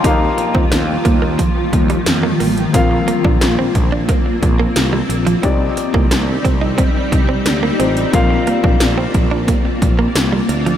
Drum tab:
HH |x-x-x-x-x-xxx-ox|x-x-x-x-x-x-x-xx|x-x-x-x-x-x-x-xx|x-x-x-x-x-x-x-xx|
TB |----x-------x---|----x-------x---|----x-------x---|----x-------x---|
SD |----o-------o---|----o-------o---|----o-------o---|----o-------o---|
BD |o--o--o-o-o-----|o--o--o-o-o-----|o--o--o-o-o-----|o--o--o-o-o-----|